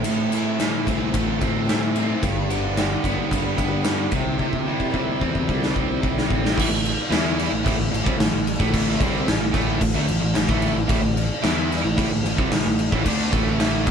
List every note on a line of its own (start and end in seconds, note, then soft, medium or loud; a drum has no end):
0.00 0.31 A2 medium
0.00 0.32 E3 medium
0.00 0.31 A3 medium
0.00 0.31 C4 medium
0.00 0.32 E4 medium
0.00 0.33 C5 medium
0.04 1.41 A2 medium
0.04 0.77 A2 medium
0.04 ride medium
0.32 0.59 E3 medium
0.32 0.46 A3 medium
0.32 0.46 C4 medium
0.32 1.68 E4 medium
0.32 0.45 E4 medium
0.32 0.44 C5 medium
0.32 ride medium
0.45 0.58 A3 soft
0.45 0.58 C4 medium
0.45 0.59 E4 medium
0.45 0.59 C5 medium
0.58 0.86 A2 medium
0.58 0.87 E3 medium
0.58 1.68 E3 medium
0.58 0.84 A3 medium
0.58 1.12 A3 medium
0.58 0.85 C4 medium
0.58 0.86 E4 medium
0.58 0.87 C5 medium
0.58 snare medium
0.58 ride medium
0.85 1.11 C2 medium
0.85 0.99 A3 medium
0.85 1.94 C4 medium
0.85 1.00 C4 medium
0.85 0.98 E4 medium
0.85 0.96 C5 medium
0.85 kick medium
0.85 ride medium
0.97 1.26 A3 soft
0.97 1.25 C4 soft
0.97 1.23 E4 medium
0.97 1.23 C5 medium
1.13 1.38 A1 medium
1.13 1.68 A3 medium
1.13 kick medium
1.13 ride medium
1.24 1.37 A3 soft
1.24 1.38 C4 medium
1.24 1.40 E4 medium
1.24 1.40 C5 medium
1.38 2.13 A2 medium
1.38 2.23 E3 medium
1.38 1.53 A3 medium
1.38 1.54 C4 medium
1.38 1.96 C4 medium
1.38 1.54 E4 medium
1.38 1.53 C5 medium
1.38 kick medium
1.38 ride medium
1.54 1.64 A3 medium
1.54 1.65 C4 medium
1.54 1.66 E4 medium
1.54 1.66 C5 medium
1.65 1.80 A2 medium
1.65 1.81 E3 medium
1.65 1.81 A3 medium
1.65 1.81 C4 medium
1.65 1.80 E4 loud
1.65 1.80 C5 medium
1.69 2.23 E3 medium
1.69 2.23 A3 medium
1.69 snare loud
1.69 ride medium
1.81 2.21 A3 soft
1.81 2.22 C4 soft
1.81 2.23 E4 medium
1.81 2.22 C5 medium
1.95 2.23 C4 medium
1.95 ride medium
2.22 2.94 G1 medium
2.22 3.59 G2 medium
2.22 2.47 G3 medium
2.22 2.48 D4 medium
2.22 2.49 G4 medium
2.22 2.49 B4 medium
2.22 kick loud
2.22 ride medium
2.48 2.75 D3 medium
2.48 2.63 G3 medium
2.48 3.86 D4 medium
2.48 2.63 D4 medium
2.48 2.64 G4 medium
2.48 2.62 B4 medium
2.48 ride medium
2.63 2.75 D4 soft
2.63 2.76 G4 medium
2.63 2.77 B4 medium
2.76 3.83 D3 medium
2.76 3.01 G3 medium
2.76 3.31 G3 medium
2.76 3.02 D4 medium
2.76 3.03 G4 loud
2.76 3.03 B4 medium
2.76 snare loud
2.76 ride medium
3.02 3.16 G1 medium
3.02 3.17 G3 medium
3.02 4.14 B3 medium
3.02 3.17 D4 medium
3.02 3.16 G4 medium
3.02 3.14 B4 medium
3.02 kick medium
3.02 ride medium
3.15 3.44 D4 soft
3.15 3.43 G4 soft
3.15 3.42 B4 medium
3.31 3.55 G2 medium
3.31 3.85 G3 medium
3.31 kick medium
3.31 ride medium
3.43 3.55 D4 medium
3.43 3.56 G4 medium
3.43 3.58 B4 medium
3.55 4.06 G2 medium
3.55 3.70 G3 medium
3.55 4.12 B3 medium
3.55 3.69 D4 medium
3.55 3.68 G4 medium
3.55 kick medium
3.55 ride medium
3.59 4.10 D3 medium
3.59 3.66 B4 medium
3.67 3.81 D4 soft
3.67 3.82 G4 medium
3.67 3.83 B4 medium
3.81 4.12 D3 medium
3.81 3.97 G3 medium
3.81 3.97 D4 medium
3.81 3.97 G4 medium
3.81 3.96 B4 medium
3.81 snare loud
3.81 ride medium
3.86 4.13 G3 medium
3.98 4.13 D4 medium
3.98 4.12 G4 medium
3.98 4.12 B4 medium
4.11 4.36 C2 medium
4.11 4.38 C3 medium
4.11 4.67 C3 medium
4.11 4.67 E3 medium
4.11 4.65 G3 medium
4.11 4.66 C4 medium
4.11 4.66 E4 loud
4.11 4.68 C5 medium
4.11 kick loud
4.11 ride medium
4.39 5.11 C3 medium
4.39 5.74 C3 medium
4.39 kick medium
4.53 kick medium
4.66 5.46 G3 medium
4.66 4.79 G3 medium
4.66 4.79 C4 medium
4.66 4.78 E4 medium
4.66 6.03 E4 medium
4.66 4.76 C5 medium
4.77 4.90 G3 medium
4.77 4.91 C4 medium
4.77 4.90 E4 medium
4.77 4.91 C5 medium
4.77 kick medium
4.90 5.19 C3 medium
4.90 6.00 C3 medium
4.90 5.20 E3 medium
4.90 5.15 G3 medium
4.90 5.46 G3 medium
4.90 5.16 C4 medium
4.90 5.18 E4 medium
4.90 5.18 C5 medium
4.90 kick medium
5.16 5.32 G3 medium
5.16 5.32 C4 medium
5.16 5.32 E4 medium
5.16 5.30 C5 medium
5.20 5.45 E2 medium
5.20 6.27 C4 medium
5.20 kick medium
5.31 5.62 G3 soft
5.31 5.61 C4 soft
5.31 5.60 E4 medium
5.31 5.59 C5 medium
5.31 kick medium
5.47 5.72 C2 loud
5.47 6.01 G3 medium
5.47 kick medium
5.60 5.71 G3 soft
5.60 5.73 C4 medium
5.60 5.73 E4 medium
5.60 5.74 C5 medium
5.60 snare medium
5.73 6.00 C2 medium
5.73 6.54 C3 medium
5.73 5.88 G3 medium
5.73 5.88 C4 medium
5.73 6.28 C4 medium
5.73 5.88 E4 medium
5.73 5.86 C5 medium
5.73 kick medium
5.88 6.02 G3 medium
5.88 6.01 C4 soft
5.88 6.03 E4 medium
5.88 6.02 C5 medium
6.01 6.27 B1 medium
6.01 6.56 C3 medium
6.01 6.16 C3 medium
6.01 6.16 E3 medium
6.01 6.56 G3 medium
6.01 6.17 G3 medium
6.01 6.16 C4 medium
6.01 6.15 E4 medium
6.01 6.13 C5 medium
6.01 kick medium
6.15 6.58 C4 medium
6.15 6.57 E4 medium
6.15 6.56 C5 medium
6.15 snare medium
6.19 6.58 G3 medium
6.28 6.54 A1 medium
6.28 6.56 C4 medium
6.28 kick medium
6.45 snare medium
6.55 6.69 A1 loud
6.55 6.69 A2 medium
6.55 6.69 E3 loud
6.55 kick loud
6.59 crash loud
6.59 crash medium
6.70 6.95 A1 medium
6.70 6.92 A2 medium
6.70 6.92 E3 medium
6.85 crash medium
7.10 7.49 E2 loud
7.10 7.49 E3 medium
7.10 7.49 B3 loud
7.10 7.51 E4 medium
7.10 snare loud
7.10 crash medium
7.39 crash medium
7.50 7.64 A1 medium
7.50 7.62 A2 medium
7.50 7.63 E3 medium
7.64 7.77 A1 medium
7.64 7.76 A2 loud
7.64 7.77 E3 loud
7.64 kick loud
7.64 crash medium
7.78 7.91 A1 medium
7.78 7.90 A2 medium
7.78 7.90 E3 medium
7.91 8.05 A1 medium
7.91 8.04 A2 medium
7.91 8.05 E3 medium
7.91 crash medium
8.05 8.18 C2 loud
8.05 8.18 C3 medium
8.05 8.18 G3 loud
8.05 kick loud
8.18 8.32 A1 medium
8.18 8.31 A2 medium
8.18 8.31 E3 medium
8.18 snare loud
8.18 crash medium
8.32 8.58 A1 medium
8.32 8.54 A2 medium
8.32 8.54 E3 medium
8.47 crash medium
8.59 8.98 A1 loud
8.59 8.98 A2 medium
8.59 9.00 E3 loud
8.59 9.00 A3 loud
8.59 kick loud
8.59 snare soft
8.74 kick loud
8.74 crash medium
8.99 9.26 C2 loud
8.99 9.26 C3 medium
8.99 9.26 G3 loud
8.99 9.27 C4 loud
8.99 kick loud
8.99 crash medium
9.26 9.40 A1 medium
9.26 9.38 A2 medium
9.26 9.39 E3 medium
9.26 snare loud
9.26 crash medium
9.40 9.54 A1 medium
9.40 9.52 A2 medium
9.40 9.53 E3 medium
9.53 9.80 A1 loud
9.53 9.79 A2 medium
9.53 9.80 E3 medium
9.53 9.81 A3 loud
9.53 kick loud
9.53 snare soft
9.53 crash medium
9.81 9.94 A1 medium
9.81 9.94 A2 medium
9.81 9.95 E3 medium
9.81 kick medium
9.81 crash medium
9.95 10.08 D2 medium
9.95 10.08 D3 medium
9.95 10.07 A3 loud
10.08 10.21 A1 medium
10.08 10.19 A2 medium
10.08 10.20 E3 medium
10.08 crash medium
10.21 10.35 A1 medium
10.21 10.33 A2 medium
10.21 10.33 E3 medium
10.34 10.48 A1 medium
10.34 10.47 A2 medium
10.34 10.48 E3 medium
10.34 snare loud
10.34 crash medium
10.48 10.74 A1 medium
10.48 10.74 A2 loud
10.48 10.74 E3 loud
10.48 10.76 A3 loud
10.48 kick loud
10.62 crash medium
10.75 10.88 A1 medium
10.75 10.86 A2 medium
10.75 10.87 E3 medium
10.87 11.02 A1 medium
10.87 11.01 A2 loud
10.87 11.00 E3 loud
10.87 kick loud
10.87 crash medium
11.01 11.29 A1 medium
11.01 11.24 A2 medium
11.01 11.24 E3 medium
11.17 crash medium
11.42 11.81 E2 loud
11.42 11.82 E3 loud
11.42 11.83 B3 loud
11.42 11.83 E4 loud
11.42 snare loud
11.42 crash medium
11.72 snare soft
11.72 crash medium
11.83 11.97 A1 medium
11.83 11.95 A2 medium
11.83 11.96 E3 medium
11.96 12.11 A1 medium
11.96 12.10 A2 medium
11.96 12.10 E3 loud
11.96 kick loud
11.96 crash medium
12.11 12.24 A1 medium
12.11 12.21 A2 medium
12.11 12.22 E3 medium
12.23 12.37 A1 medium
12.23 12.36 A2 medium
12.23 12.36 E3 medium
12.23 crash medium
12.36 12.51 C2 medium
12.36 12.50 C3 medium
12.36 12.50 G3 loud
12.36 kick loud
12.50 12.64 A1 medium
12.50 12.63 A2 medium
12.50 12.63 E3 medium
12.50 snare loud
12.50 crash medium
12.64 12.91 A1 medium
12.64 12.86 A2 medium
12.64 12.87 E3 medium
12.79 crash medium
12.90 13.05 A1 loud
12.90 13.04 A2 medium
12.90 13.04 E3 loud
12.90 kick loud
13.04 13.31 D2 medium
13.04 13.30 D3 loud
13.04 13.31 A3 loud
13.04 13.32 D4 loud
13.04 kick medium
13.04 crash medium
13.31 13.83 A1 loud
13.31 13.85 A2 medium
13.31 13.84 E3 loud
13.31 13.86 A3 loud
13.31 kick loud
13.31 crash medium
13.60 snare loud
13.60 crash medium
13.85 13.91 E2 medium
13.85 13.91 E3 medium
13.85 13.91 B3 loud
13.85 kick loud
13.85 crash medium